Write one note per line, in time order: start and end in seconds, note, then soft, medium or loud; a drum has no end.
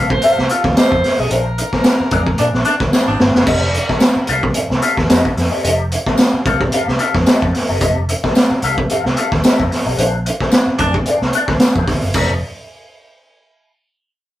0.00 0.15 C2 loud
0.00 0.13 G4 medium
0.10 0.51 C5 loud
0.10 muted clean electric guitar stroke soft
0.10 kick loud
0.22 0.43 G4 medium
0.22 0.38 A4 medium
0.22 0.39 F5 loud
0.22 closed hi-hat medium
0.38 0.47 C2 medium
0.38 muted clean electric guitar stroke soft
0.38 snare soft
0.49 0.76 F4 medium
0.49 0.64 G4 medium
0.49 0.65 A4 medium
0.49 0.65 F5 medium
0.49 closed hi-hat medium
0.64 0.73 D#2 medium
0.64 muted clean electric guitar stroke soft
0.64 kick loud
0.64 snare soft
0.77 0.95 G4 medium
0.77 0.96 A4 medium
0.77 1.20 C5 loud
0.77 0.96 D#5 medium
0.77 snare loud
0.77 closed hi-hat loud
0.77 tambourine loud
0.92 1.00 F2 medium
0.92 kick medium
1.04 muted clean electric guitar stroke soft
1.04 snare soft
1.04 open hi-hat medium
1.19 1.27 B1 medium
1.19 1.31 G4 medium
1.19 1.32 G#4 medium
1.19 1.31 A4 medium
1.19 1.31 D#5 medium
1.30 1.62 A#1 loud
1.30 1.48 D4 medium
1.30 1.46 G#4 medium
1.30 2.93 A#4 loud
1.30 1.45 C5 medium
1.30 closed hi-hat medium
1.47 muted clean electric guitar stroke soft
1.58 muted clean electric guitar stroke soft
1.58 closed hi-hat medium
1.73 1.85 D4 soft
1.73 1.85 G#4 medium
1.73 1.84 C5 medium
1.73 kick medium
1.73 snare soft
1.84 snare loud
1.84 closed hi-hat medium
1.84 tambourine medium
2.00 muted clean electric guitar stroke soft
2.00 muted fingered electric bass stroke soft
2.11 2.31 F2 medium
2.11 2.30 D4 medium
2.11 2.27 G#4 medium
2.11 2.27 D5 medium
2.11 kick loud
2.11 closed hi-hat medium
2.27 muted clean electric guitar stroke soft
2.27 kick medium
2.38 2.50 A#2 loud
2.38 2.49 D4 medium
2.38 2.57 D4 medium
2.38 2.55 G#4 medium
2.38 2.54 D5 medium
2.38 closed hi-hat medium
2.53 2.62 A#1 medium
2.53 muted clean electric guitar stroke soft
2.53 snare soft
2.65 2.75 D4 loud
2.65 2.81 D4 medium
2.65 2.81 G#4 medium
2.65 2.81 D5 medium
2.65 closed hi-hat medium
2.80 2.89 D2 medium
2.80 muted clean electric guitar stroke soft
2.80 kick loud
2.80 snare soft
2.92 3.12 D4 medium
2.92 3.12 G#4 medium
2.92 3.13 C5 medium
2.92 snare medium
2.92 tambourine loud
3.07 3.17 G#1 loud
3.07 3.25 D4 medium
3.20 3.31 G1 loud
3.20 muted clean electric guitar stroke soft
3.20 snare medium
3.34 3.44 F#1 medium
3.34 3.47 D4 medium
3.34 3.46 G#4 medium
3.34 3.46 C5 medium
3.34 snare medium
3.46 3.78 F1 loud
3.46 3.65 G4 medium
3.46 3.61 A4 medium
3.46 3.61 D#5 medium
3.46 kick loud
3.46 crash loud
3.62 muted clean electric guitar stroke soft
3.73 muted clean electric guitar stroke soft
3.73 closed hi-hat medium
3.89 4.02 G4 soft
3.89 4.02 A4 soft
3.89 4.01 D#5 medium
3.89 kick medium
3.89 snare soft
4.00 snare loud
4.00 closed hi-hat medium
4.00 tambourine loud
4.16 muted fingered electric bass stroke medium
4.16 muted clean electric guitar stroke soft
4.27 4.49 C2 loud
4.27 4.47 G4 medium
4.27 4.43 A4 medium
4.27 4.43 F5 medium
4.27 closed hi-hat medium
4.43 muted clean electric guitar stroke soft
4.43 kick loud
4.54 muted clean electric guitar stroke soft
4.54 closed hi-hat medium
4.70 4.79 C2 medium
4.70 muted clean electric guitar stroke soft
4.70 snare soft
4.81 5.00 G4 medium
4.81 4.97 A4 medium
4.81 4.97 F5 medium
4.81 closed hi-hat medium
4.97 5.07 D#2 medium
4.97 muted clean electric guitar stroke soft
4.97 kick medium
4.97 snare soft
5.09 5.21 F2 loud
5.09 5.28 G4 medium
5.09 5.28 A4 medium
5.09 5.28 D#5 medium
5.09 snare loud
5.09 closed hi-hat loud
5.09 tambourine loud
5.25 kick medium
5.37 5.48 F2 loud
5.37 muted clean electric guitar stroke soft
5.37 snare soft
5.37 open hi-hat medium
5.51 5.61 G4 medium
5.51 5.62 A4 medium
5.51 5.63 D#5 medium
5.63 5.96 F1 loud
5.63 5.82 G4 medium
5.63 5.79 A4 medium
5.63 5.77 D#5 medium
5.63 closed hi-hat medium
5.79 muted clean electric guitar stroke medium
5.91 muted clean electric guitar stroke soft
5.91 closed hi-hat medium
6.06 6.19 G4 soft
6.06 6.19 A4 soft
6.06 6.19 D#5 medium
6.06 kick medium
6.06 snare soft
6.18 snare loud
6.18 closed hi-hat medium
6.18 tambourine medium
6.34 muted fingered electric bass stroke soft
6.34 muted clean electric guitar stroke soft
6.45 6.65 C2 medium
6.45 6.64 G4 medium
6.45 6.61 A4 medium
6.45 6.61 F5 loud
6.45 kick loud
6.45 closed hi-hat medium
6.61 muted clean electric guitar stroke medium
6.61 kick medium
6.72 6.91 G4 medium
6.72 6.87 A4 medium
6.72 6.88 F5 medium
6.72 closed hi-hat medium
6.88 6.97 C2 medium
6.88 muted clean electric guitar stroke soft
6.88 snare soft
6.99 7.14 G4 medium
6.99 7.15 A4 medium
6.99 7.15 F5 medium
6.99 closed hi-hat medium
7.14 7.24 F2 loud
7.14 muted clean electric guitar stroke soft
7.14 kick medium
7.14 snare soft
7.26 7.45 G4 medium
7.26 7.46 A4 medium
7.26 7.46 D#5 medium
7.26 snare loud
7.26 closed hi-hat loud
7.26 tambourine medium
7.42 7.51 F2 loud
7.42 kick medium
7.53 muted clean electric guitar stroke soft
7.53 snare soft
7.53 open hi-hat medium
7.69 7.78 F#1 medium
7.69 7.80 G4 medium
7.69 7.81 A4 medium
7.69 7.81 D#5 medium
7.81 8.12 F1 loud
7.81 8.00 G4 medium
7.81 7.97 A4 medium
7.81 7.96 D#5 loud
7.81 kick loud
7.81 closed hi-hat medium
7.97 muted clean electric guitar stroke soft
8.09 muted clean electric guitar stroke soft
8.09 closed hi-hat medium
8.24 8.36 G4 soft
8.24 8.36 A4 medium
8.24 8.35 D#5 medium
8.24 kick medium
8.24 snare soft
8.35 snare loud
8.35 closed hi-hat medium
8.35 tambourine medium
8.51 muted clean electric guitar stroke medium
8.51 muted fingered electric bass stroke soft
8.62 8.83 C2 medium
8.62 8.81 G4 medium
8.62 8.78 A4 medium
8.62 8.78 F5 medium
8.62 closed hi-hat medium
8.78 muted clean electric guitar stroke soft
8.78 kick medium
8.89 9.08 G4 medium
8.89 9.05 A4 medium
8.89 9.04 F5 medium
8.89 closed hi-hat medium
9.05 9.14 C2 medium
9.05 muted clean electric guitar stroke soft
9.05 snare soft
9.17 9.32 G4 medium
9.17 9.32 A4 medium
9.17 9.32 F5 medium
9.17 closed hi-hat medium
9.32 9.41 D#2 medium
9.32 muted clean electric guitar stroke soft
9.32 kick medium
9.32 snare soft
9.44 9.62 G4 medium
9.44 9.63 A4 medium
9.44 9.63 D#5 medium
9.44 snare loud
9.44 closed hi-hat loud
9.44 tambourine loud
9.60 9.68 F2 medium
9.60 kick medium
9.71 muted clean electric guitar stroke soft
9.71 snare soft
9.71 open hi-hat medium
9.86 9.95 B1 medium
9.86 9.98 G4 medium
9.86 9.98 A4 medium
9.86 9.98 D#5 medium
9.97 10.29 A#1 loud
9.97 10.16 D4 medium
9.97 10.13 G#4 medium
9.97 10.13 C5 medium
9.97 closed hi-hat medium
10.14 muted clean electric guitar stroke soft
10.26 muted clean electric guitar stroke soft
10.26 closed hi-hat medium
10.40 10.53 D4 medium
10.40 10.53 G#4 medium
10.40 10.52 C5 medium
10.40 kick medium
10.40 snare soft
10.52 snare loud
10.52 closed hi-hat medium
10.52 tambourine medium
10.67 muted clean electric guitar stroke soft
10.67 muted fingered electric bass stroke soft
10.78 10.99 F2 medium
10.78 10.96 D4 loud
10.78 10.98 D4 medium
10.78 10.96 G#4 medium
10.78 10.96 D5 medium
10.78 kick loud
10.78 closed hi-hat medium
10.94 muted clean electric guitar stroke medium
10.94 kick loud
11.06 11.26 D4 medium
11.06 11.23 G#4 medium
11.06 11.23 D5 medium
11.06 closed hi-hat medium
11.22 11.30 C2 medium
11.22 muted clean electric guitar stroke soft
11.22 snare soft
11.33 11.49 D4 medium
11.33 11.50 G#4 medium
11.33 closed hi-hat medium
11.37 11.50 D5 medium
11.48 11.57 D2 medium
11.48 muted clean electric guitar stroke soft
11.48 kick loud
11.48 snare soft
11.60 muted clean electric guitar stroke soft
11.60 snare loud
11.60 closed hi-hat loud
11.60 tambourine loud
11.76 11.84 F2 loud
11.76 11.88 D4 medium
11.76 11.88 G#4 medium
11.76 11.89 C5 medium
11.76 kick medium
11.87 11.99 D2 loud
11.87 muted clean electric guitar stroke soft
11.87 kick loud
11.87 snare soft
11.87 open hi-hat medium
12.03 12.12 F#1 medium
12.03 muted clean electric guitar stroke soft
12.14 12.40 F1 loud
12.14 12.34 D#4 medium
12.14 12.32 G4 medium
12.14 12.33 A4 medium
12.14 12.33 D#5 medium
12.14 kick loud
12.14 crash medium
12.14 tambourine medium